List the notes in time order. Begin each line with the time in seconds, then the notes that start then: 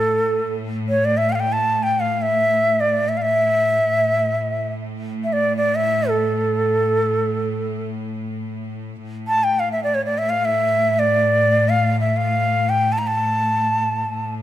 Already playing: A2 A4
0.89 C#5
1.05 D5
1.17 E5
1.29 F5 G5
1.33 F5
1.40 G5
1.52 A5
1.83 G5
2.00 F5
2.22 E5
2.80 D5
3.09 E5
3.17 F5
3.22 E5
3.85 A2
5.24 E5
5.33 D5
5.57 D5
5.75 E5
6.09 A4
8.99 A2
9.28 A5
9.44 G5
9.59 F5
9.72 E5
9.84 D5
9.94 C#5
10.05 D5
10.18 E5
10.30 F5
10.45 E5
10.99 D5
11.69 F5
12.00 E5
12.17 F5
12.69 G5
12.92 A5
12.98 A#5
13.07 A5
14.09 A2